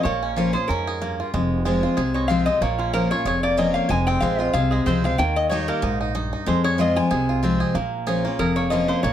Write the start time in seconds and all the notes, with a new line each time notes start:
Already playing: C#4 F4
0.03 A#1 A#2 A#3 C#5
0.23 C#4
0.36 F3 A#3 C#4 F4
0.53 F4 G#4 C5
0.57 C#4
0.68 F2 G#2 C#4 A#4
0.87 G#4
1.01 G2 A#3
1.20 F4
1.34 F1 F2 G#3
1.65 F3 G#3 C4 F4
1.83 C4 F4
1.97 C2 C3 G#4
2.14 G#3 C#5
2.28 F3 G#3 C4 F4 F5
2.46 G#3 C4 F4 D#5
2.61 A#1 A#2 A#3 C#5
2.78 C#4 F4
2.93 F3 A#3 C#4 F4 A#4
3.11 C#4 F4 C#5
3.25 F1 F2 G#4 C#5
3.43 A#3 D5
3.57 F3 A#3 C#4 F4 D#5
3.74 A#3 F5
3.89 F1 F2 G#3 G#5
4.07 C4 G5
4.20 A#1 F3 G#3 C4 F4 F5
4.39 C4 F4 D#5
4.53 C2 C3 G#4 F5
4.71 G#3 G#4
4.86 C#2 F3 G#3 C4 F4 C5
5.04 G#3 C4 F4 F5
5.18 D#2 D#3 A#3 G5
5.36 D#5
5.49 G3 A#3 D#4 G4 C#5
5.68 A#3 A#4
5.82 A#1 G#2 D#4
6.01 D#4
6.15 G2 D#4
6.33 D#4
6.46 F2 G#3 C5
6.64 G#4 C#5
6.78 F3 G#3 C4 F4 D#5
6.95 G#3 C4 F4 G#5
7.11 C2 C3 G#4
7.29 F4
7.43 F3 G#3 C4 F4
7.60 G#4
7.75 A#1 A#2 A#3
8.07 F3 A#3 C#4 F4 G#4
8.25 A#3 C#4 F4
8.39 F1 F2 G#4 A#4
8.56 A#3 C#5
8.70 F3 A#3 C#4 F4 D#5
8.88 A#3 C5
9.03 A#1 A#2 A#3 C#5